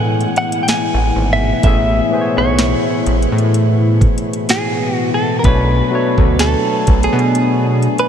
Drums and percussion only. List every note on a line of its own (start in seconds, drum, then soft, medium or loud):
0.21 closed hi-hat soft
0.36 closed hi-hat medium
0.52 closed hi-hat medium
0.68 snare loud
0.68 closed hi-hat medium
1.63 kick loud
1.63 closed hi-hat medium
2.59 snare loud
2.59 closed hi-hat medium
3.06 closed hi-hat medium
3.22 closed hi-hat medium
3.38 closed hi-hat soft
3.54 closed hi-hat medium
4.01 kick loud
4.01 closed hi-hat soft
4.18 closed hi-hat medium
4.33 closed hi-hat medium
4.49 snare loud
4.49 closed hi-hat medium
5.44 kick loud
5.44 closed hi-hat medium
6.18 kick loud
6.39 snare loud
6.39 closed hi-hat medium
6.87 kick medium
6.87 closed hi-hat medium
7.03 closed hi-hat medium
7.19 closed hi-hat soft
7.35 closed hi-hat medium
7.83 closed hi-hat soft
7.98 closed hi-hat medium